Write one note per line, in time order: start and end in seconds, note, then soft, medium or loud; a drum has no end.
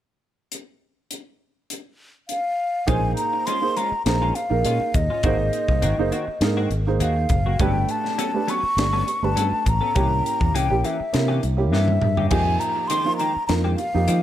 0.52 closed hi-hat soft
1.11 closed hi-hat medium
1.70 closed hi-hat medium
2.29 2.89 F5 medium
2.29 closed hi-hat soft
2.87 3.12 A#1 medium
2.87 3.03 G#3 medium
2.87 3.52 A#3 medium
2.87 3.03 C#4 medium
2.87 3.52 D#4 medium
2.87 3.02 F4 medium
2.87 3.52 G#4 medium
2.87 3.53 C5 medium
2.87 3.16 G#5 medium
2.87 kick loud
2.87 closed hi-hat medium
3.03 muted clean electric guitar stroke soft
3.16 3.48 A#5 medium
3.16 closed hi-hat medium
3.33 muted clean electric guitar stroke soft
3.46 3.62 G#3 medium
3.46 3.62 C#4 medium
3.46 3.62 F4 medium
3.46 3.78 C6 medium
3.46 closed hi-hat medium
3.61 3.74 A#3 medium
3.61 3.74 D#4 medium
3.61 3.74 G#4 medium
3.61 3.75 C5 medium
3.61 muted clean electric guitar stroke soft
3.76 3.92 G#3 medium
3.76 3.92 C#4 medium
3.76 3.91 F4 soft
3.76 3.83 G#4 soft
3.76 3.84 C5 soft
3.76 4.06 A#5 medium
3.76 closed hi-hat medium
3.92 muted fingered electric bass stroke soft
3.92 muted clean electric guitar stroke soft
4.05 4.31 A#1 medium
4.05 4.31 A#3 medium
4.05 4.32 D#4 medium
4.05 4.32 G#4 medium
4.05 4.32 C5 medium
4.05 4.37 A#5 medium
4.05 muted clean electric guitar stroke soft
4.05 snare medium
4.05 closed hi-hat medium
4.22 4.35 G#3 soft
4.22 4.35 C#4 soft
4.22 4.36 F4 medium
4.35 4.43 G#4 soft
4.35 4.44 C5 soft
4.35 4.97 F5 medium
4.35 muted clean electric guitar stroke soft
4.35 closed hi-hat medium
4.50 4.62 A#1 medium
4.50 4.88 A#3 medium
4.50 4.88 D#4 medium
4.50 4.89 G#4 medium
4.50 4.89 A#4 medium
4.65 4.78 A#2 medium
4.65 4.80 G#3 soft
4.65 4.80 C#4 soft
4.65 4.80 F4 medium
4.65 closed hi-hat medium
4.80 muted fingered electric bass stroke soft
4.80 muted clean electric guitar stroke soft
4.94 5.07 D#2 medium
4.94 5.02 G#4 soft
4.94 5.02 C#5 soft
4.94 6.74 D#5 medium
4.94 muted clean electric guitar stroke soft
4.94 kick medium
4.94 closed hi-hat medium
5.10 5.24 C#4 soft
5.10 5.24 F4 medium
5.23 5.49 G#1 medium
5.23 5.39 D#3 medium
5.23 5.88 A#3 medium
5.23 5.39 A#3 medium
5.23 5.38 C4 medium
5.23 5.89 D#4 medium
5.23 5.38 F#4 medium
5.23 5.89 G#4 medium
5.23 5.89 C5 medium
5.23 kick loud
5.23 closed hi-hat medium
5.39 muted clean electric guitar stroke soft
5.53 closed hi-hat medium
5.68 5.84 C2 medium
5.68 muted clean electric guitar stroke soft
5.68 kick medium
5.82 5.96 G#1 medium
5.82 5.98 D#3 medium
5.82 5.98 A#3 medium
5.82 5.97 C4 medium
5.82 5.97 F#4 medium
5.82 closed hi-hat medium
5.98 6.10 F#1 medium
5.98 6.11 A#3 medium
5.98 6.11 D#4 medium
5.98 6.11 G#4 medium
5.98 6.11 C5 medium
5.98 muted clean electric guitar stroke soft
6.12 6.27 D#3 medium
6.12 6.27 A#3 medium
6.12 6.26 C4 medium
6.12 6.26 F#4 medium
6.12 6.20 G#4 soft
6.12 6.21 C5 soft
6.12 closed hi-hat soft
6.27 muted clean electric guitar stroke soft
6.27 muted fingered electric bass stroke soft
6.41 6.66 G#2 medium
6.41 6.68 A#3 medium
6.41 6.68 D#4 medium
6.41 6.68 G#4 medium
6.41 6.68 A#4 medium
6.41 muted clean electric guitar stroke soft
6.41 snare loud
6.41 closed hi-hat medium
6.57 6.70 D#3 soft
6.57 6.71 A#3 medium
6.57 6.70 C4 medium
6.57 6.71 F#4 medium
6.70 7.01 G#1 medium
6.70 6.79 G#4 soft
6.70 6.80 A#4 soft
6.70 muted clean electric guitar stroke soft
6.70 closed hi-hat soft
6.87 7.25 A#3 medium
6.87 7.25 D#4 medium
6.87 7.25 G#4 medium
6.87 7.25 C5 medium
7.00 7.25 D#2 medium
7.00 7.16 D#3 medium
7.00 7.16 A#3 soft
7.00 7.16 C4 soft
7.00 7.15 F#4 medium
7.00 7.63 F5 medium
7.00 closed hi-hat medium
7.17 muted clean electric guitar stroke soft
7.29 7.55 F#1 medium
7.29 7.38 G#4 soft
7.29 muted clean electric guitar stroke soft
7.29 kick medium
7.29 closed hi-hat medium
7.33 7.39 C5 soft
7.46 7.59 A#3 soft
7.46 7.60 C4 soft
7.46 7.60 F#4 soft
7.59 7.84 G1 medium
7.59 7.75 F#3 medium
7.59 8.24 A3 medium
7.59 7.74 B3 medium
7.59 7.74 C#4 medium
7.59 8.25 D4 medium
7.59 8.25 G4 medium
7.59 7.74 A4 medium
7.59 8.25 B4 medium
7.59 7.93 G5 medium
7.59 kick loud
7.59 closed hi-hat medium
7.75 muted clean electric guitar stroke soft
7.89 8.51 A5 medium
7.89 closed hi-hat medium
8.04 muted clean electric guitar stroke soft
8.04 snare soft
8.18 8.34 F#3 medium
8.18 8.33 B3 medium
8.18 8.33 C#4 medium
8.18 8.32 A4 medium
8.18 closed hi-hat medium
8.34 8.46 A3 medium
8.34 8.47 D4 medium
8.34 8.47 G4 medium
8.34 8.47 B4 medium
8.34 muted clean electric guitar stroke soft
8.47 8.63 F#3 soft
8.47 8.63 B3 medium
8.47 8.62 C#4 medium
8.47 8.56 G4 soft
8.47 8.62 A4 medium
8.47 8.57 B4 soft
8.47 9.26 C#6 loud
8.47 closed hi-hat soft
8.63 muted clean electric guitar stroke soft
8.63 muted fingered electric bass stroke soft
8.77 9.02 G1 medium
8.77 9.04 A3 medium
8.77 9.04 D4 medium
8.77 9.04 G4 medium
8.77 9.04 D5 medium
8.77 muted clean electric guitar stroke soft
8.77 snare loud
8.77 closed hi-hat medium
8.93 9.06 F#3 soft
8.93 9.05 B3 soft
8.93 9.06 C#4 medium
8.93 9.06 A4 medium
9.07 9.14 G4 soft
9.07 9.15 B4 soft
9.07 muted clean electric guitar stroke soft
9.07 closed hi-hat medium
9.22 9.34 G1 medium
9.22 9.61 A3 medium
9.22 9.61 D4 medium
9.22 9.61 G4 medium
9.22 9.61 B4 medium
9.22 9.70 A5 medium
9.36 9.50 G2 medium
9.36 9.52 F#3 soft
9.36 9.51 B3 medium
9.36 9.51 C#4 soft
9.36 9.51 A4 medium
9.36 closed hi-hat medium
9.52 muted clean electric guitar stroke soft
9.52 muted fingered electric bass stroke soft
9.66 9.79 A1 medium
9.66 9.73 G4 soft
9.66 9.74 B4 soft
9.66 10.57 A#5 loud
9.66 muted clean electric guitar stroke soft
9.66 kick medium
9.66 closed hi-hat medium
9.81 9.95 B3 soft
9.81 9.95 C#4 soft
9.81 9.95 A4 soft
9.95 10.20 C2 medium
9.95 10.11 E3 medium
9.95 10.60 A#3 medium
9.95 10.10 A#3 medium
9.95 10.60 C#4 medium
9.95 10.10 C#4 medium
9.95 10.60 E4 medium
9.95 10.09 G4 medium
9.95 10.60 G4 medium
9.95 kick loud
9.95 closed hi-hat medium
10.11 muted clean electric guitar stroke soft
10.26 closed hi-hat medium
10.40 10.55 E2 medium
10.40 muted clean electric guitar stroke soft
10.40 kick medium
10.54 10.68 C2 medium
10.54 10.70 E3 medium
10.54 10.70 A#3 medium
10.54 10.70 C#4 medium
10.54 10.69 G4 medium
10.54 10.87 G5 medium
10.54 closed hi-hat medium
10.70 10.82 A#1 medium
10.70 10.82 A#3 medium
10.70 10.82 C#4 medium
10.70 10.81 E4 medium
10.70 10.83 G4 medium
10.70 muted clean electric guitar stroke soft
10.83 11.00 E3 medium
10.83 10.99 A#3 soft
10.83 10.99 C#4 soft
10.83 10.91 E4 soft
10.83 10.92 G4 soft
10.83 10.98 G4 medium
10.83 11.46 E5 medium
10.83 closed hi-hat soft
11.00 muted clean electric guitar stroke soft
11.00 muted fingered electric bass stroke soft
11.13 11.39 C3 loud
11.13 11.39 A#3 medium
11.13 11.39 C#4 medium
11.13 11.39 E4 medium
11.13 11.40 A#4 medium
11.13 muted clean electric guitar stroke soft
11.13 snare medium
11.13 closed hi-hat medium
11.28 11.41 E3 soft
11.28 11.42 A#3 soft
11.28 11.42 C#4 medium
11.28 11.42 G4 medium
11.41 11.73 C2 medium
11.41 11.50 E4 soft
11.41 11.50 A#4 soft
11.41 muted clean electric guitar stroke soft
11.41 closed hi-hat soft
11.57 11.96 A#3 medium
11.57 11.96 C#4 medium
11.57 11.96 E4 medium
11.57 11.96 G4 medium
11.72 11.97 G2 medium
11.72 11.88 E3 medium
11.72 11.87 A#3 soft
11.72 11.87 C#4 medium
11.72 11.87 G4 medium
11.72 12.27 E5 medium
11.72 snare soft
11.88 muted clean electric guitar stroke soft
11.88 high tom medium
12.01 12.27 G2 medium
12.01 12.09 E4 soft
12.01 12.10 A#4 soft
12.01 muted clean electric guitar stroke soft
12.01 mid tom medium
12.17 12.32 A#3 soft
12.17 12.32 C#4 soft
12.17 12.31 G4 medium
12.17 floor tom medium
12.29 12.56 F2 medium
12.29 12.47 D#3 medium
12.29 12.95 F3 medium
12.29 12.47 G#3 medium
12.29 12.95 A#3 medium
12.29 12.46 C4 medium
12.29 12.96 D#4 medium
12.29 12.96 G4 medium
12.29 12.46 G4 medium
12.29 12.61 G#5 loud
12.29 kick medium
12.29 closed hi-hat medium
12.29 crash medium
12.47 muted clean electric guitar stroke soft
12.60 12.89 A#5 medium
12.60 closed hi-hat medium
12.76 muted clean electric guitar stroke soft
12.88 13.06 D#3 medium
12.88 13.05 G#3 medium
12.88 13.05 C4 medium
12.88 13.05 G4 medium
12.88 13.16 C6 loud
12.88 closed hi-hat medium
13.04 13.17 F3 medium
13.04 13.18 A#3 medium
13.04 13.17 D#4 medium
13.04 13.18 F4 medium
13.04 muted clean electric guitar stroke soft
13.17 13.35 D#3 soft
13.17 13.34 G#3 soft
13.17 13.34 C4 medium
13.17 13.27 D#4 soft
13.17 13.27 F4 soft
13.17 13.34 G4 medium
13.17 13.46 A#5 medium
13.17 closed hi-hat soft
13.35 muted clean electric guitar stroke soft
13.35 muted fingered electric bass stroke soft
13.47 13.74 F2 medium
13.47 13.75 F3 medium
13.47 13.75 A#3 medium
13.47 13.75 D#4 medium
13.47 13.75 A#4 medium
13.47 13.54 A#5 medium
13.47 muted clean electric guitar stroke soft
13.47 snare loud
13.47 closed hi-hat medium
13.64 13.77 D#3 medium
13.64 13.77 G#3 soft
13.64 13.77 C4 medium
13.64 13.77 G4 medium
13.76 13.86 D#4 soft
13.76 13.87 G4 soft
13.76 14.23 F5 medium
13.76 muted clean electric guitar stroke soft
13.76 closed hi-hat medium
13.94 14.06 F2 medium
13.94 14.23 F3 medium
13.94 14.23 A#3 medium
13.94 14.23 D#4 medium
13.94 14.23 G4 medium
14.08 14.23 D#3 soft
14.08 14.21 F3 medium
14.08 14.23 G#3 medium
14.08 14.23 C4 medium
14.08 14.23 G4 medium
14.08 closed hi-hat medium